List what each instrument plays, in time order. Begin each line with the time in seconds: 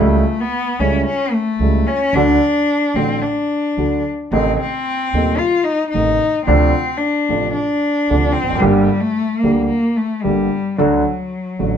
Already playing: cello A3
0.00 upright bass C#2, grand piano C#2 C#3 G3 A3 E4
0.40 cello B3
0.79 upright bass C#2, grand piano C#2 C#3 G3 A3 E4, cello C#4
1.07 cello C#4
1.32 cello A3
1.59 upright bass C#2, grand piano C#2 C#3 G3 A3 E4
1.87 cello C#4
2.13 upright bass D2, grand piano D2 D3 F#3 A3 F#4, cello D4
2.94 upright bass A1, grand piano A1 A2 D3 F#3 A3 F#4, cello C4
3.22 cello D4
3.77 upright bass D2, grand piano D2 D3 F#3 A3 F#4
4.32 upright bass A1, grand piano A1 A2 C3 D#3 A3 D#4, cello C4
4.60 cello C4
5.13 grand piano D#1 D#2 C3 D#3 A3 D#4, upright bass D#2
5.38 cello F4
5.64 cello D#4
5.90 grand piano C3, cello D#4
5.95 upright bass A1, grand piano A1 A2 D#3 A3 D#4
6.46 grand piano D2 C3 D3 F3 A3 D4, upright bass D2, cello C4
6.97 cello D4
7.29 upright bass A1, grand piano A1 A2 C3 F3 A3 D4
7.53 cello D4
8.10 grand piano D2 C3 D3 F3 A3 D4, upright bass D2
8.33 cello C4
8.43 upright bass E1, grand piano E2
8.48 upright bass F1, grand piano F2
8.55 upright bass F#1, grand piano F#2
8.59 grand piano G1 G2 D3 G3 A#3 G4, upright bass G1, cello G3
9.00 cello A3
9.40 upright bass D2, grand piano D2 D3 G3, cello A#3
9.44 grand piano A#3 G4
9.68 cello A#3
9.97 cello A3
10.23 grand piano G1 G2 D3 G3 A#3 G4, upright bass G1, cello G3
10.76 grand piano D2 D3 F#3 A3 F#4, upright bass D2, cello F#3
11.59 grand piano A1 A2 D3 F#3 A3 F#4, upright bass A1